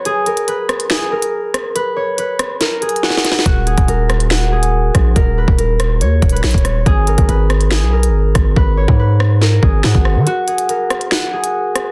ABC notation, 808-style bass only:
X:1
M:4/4
L:1/16
Q:1/4=141
K:G#m
V:1 name="808-style bass" clef=bass
z16 | z16 | D,,,3 D,,, D,,,8- D,,,2 A,,,2 | D,,,3 D,,,4- D,,, D,,2 D,,,2 A,,, D,,,3 |
G,,,3 G,,, G,,,4- G,,, B,,,2- B,,,/2 G,,,2- G,,,/2 G,,,2 | G,,,3 G,,6- G,, G,,,2 G,, G,,,2 D, | z16 |]